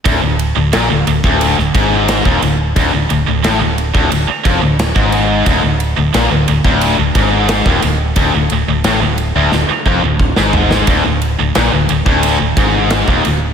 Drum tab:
RD |x-x-x-x-x-x-x-x-|x-x-x-x-x-x-x-x-|x-x-x-x-x-x-x-x-|x-x-x-x---------|
SD |----o----o--o---|----o-------o---|----o-------o---|----o---o----o-o|
FT |----------------|----------------|----------------|--------------o-|
BD |o------o--o--o--|o------o--o--o--|o------o--o--o--|o---------o-o---|

RD |x-x-x-x-x-x-x-x-|
SD |----o-------o---|
FT |----------------|
BD |o------o--o--o--|